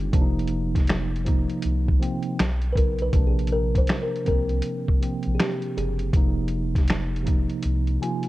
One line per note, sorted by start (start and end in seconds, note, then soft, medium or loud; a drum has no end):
0.00 0.11 F#1 loud
0.00 0.15 D3 medium
0.00 0.15 G3 medium
0.00 0.15 C4 medium
0.00 0.15 D4 medium
0.00 0.15 D#4 medium
0.00 0.16 G4 medium
0.12 1.47 F1 loud
0.12 0.90 C3 loud
0.12 0.90 F3 loud
0.12 0.91 A#3 loud
0.12 0.23 D4 loud
0.12 kick loud
0.12 closed hi-hat medium
0.22 0.95 D#4 loud
0.39 closed hi-hat soft
0.48 closed hi-hat medium
0.75 kick medium
0.75 snare soft
0.75 closed hi-hat soft
0.87 finger snap medium
0.87 snare loud
0.87 closed hi-hat medium
1.16 closed hi-hat soft
1.24 1.80 C3 medium
1.24 1.81 F3 medium
1.24 1.81 A#3 medium
1.24 1.82 D#4 medium
1.24 kick medium
1.24 closed hi-hat medium
1.50 closed hi-hat soft
1.62 1.99 C2 medium
1.62 closed hi-hat medium
1.88 kick medium
1.99 2.38 C3 medium
1.99 2.38 F3 medium
1.99 2.39 A#3 medium
1.99 2.39 C4 medium
1.99 closed hi-hat medium
2.23 closed hi-hat soft
2.39 2.73 B1 loud
2.39 finger snap medium
2.39 snare loud
2.39 closed hi-hat medium
2.62 closed hi-hat soft
2.72 3.10 B1 medium
2.72 3.04 C#3 medium
2.72 3.05 F#3 medium
2.72 3.05 B3 medium
2.72 2.76 B4 medium
2.72 kick medium
2.77 3.06 D#4 medium
2.77 3.02 A#4 medium
2.77 closed hi-hat medium
2.99 3.27 B4 loud
2.99 closed hi-hat soft
3.13 3.84 A#1 loud
3.13 3.90 C3 loud
3.13 3.91 F3 medium
3.13 3.91 A#3 medium
3.13 3.92 D4 loud
3.13 kick loud
3.13 closed hi-hat medium
3.27 3.50 G#4 medium
3.39 closed hi-hat soft
3.47 closed hi-hat medium
3.52 3.77 A#4 loud
3.75 4.00 C5 loud
3.75 kick medium
3.75 closed hi-hat soft
3.87 finger snap loud
3.87 snare loud
3.87 closed hi-hat medium
4.02 4.13 A#4 medium
4.16 closed hi-hat soft
4.23 4.80 C3 medium
4.23 4.80 F3 medium
4.23 4.81 A#3 medium
4.23 4.81 C4 medium
4.23 closed hi-hat medium
4.28 4.62 C2 loud
4.28 5.38 A#4 loud
4.28 kick medium
4.49 closed hi-hat soft
4.62 closed hi-hat medium
4.88 kick medium
5.00 5.78 C3 medium
5.00 5.78 F3 medium
5.00 5.79 A#3 medium
5.00 5.79 C4 medium
5.00 closed hi-hat medium
5.23 5.38 A#1 medium
5.23 closed hi-hat soft
5.35 5.39 G#4 medium
5.40 5.78 G4 medium
5.40 finger snap medium
5.40 snare loud
5.40 closed hi-hat medium
5.62 closed hi-hat soft
5.77 6.11 F#1 medium
5.77 8.29 G#4 medium
5.77 closed hi-hat medium
5.99 closed hi-hat soft
6.13 7.47 F1 loud
6.13 6.91 C3 medium
6.13 6.91 F3 medium
6.13 6.92 A#3 medium
6.13 6.92 D#4 loud
6.13 kick loud
6.13 closed hi-hat medium
6.48 closed hi-hat medium
6.75 kick medium
6.75 snare soft
6.75 closed hi-hat soft
6.88 finger snap medium
6.88 snare loud
6.88 closed hi-hat medium
7.16 closed hi-hat soft
7.23 7.80 C3 medium
7.23 7.80 F3 medium
7.23 7.80 A#3 medium
7.23 7.81 D#4 medium
7.23 closed hi-hat medium
7.28 kick medium
7.50 closed hi-hat soft
7.63 7.98 C2 loud
7.63 closed hi-hat medium
7.87 closed hi-hat soft
8.01 8.29 C3 medium
8.01 8.29 F3 medium
8.01 8.29 A#3 medium
8.01 8.29 F4 medium
8.01 8.29 G#5 medium
8.01 closed hi-hat medium
8.23 closed hi-hat soft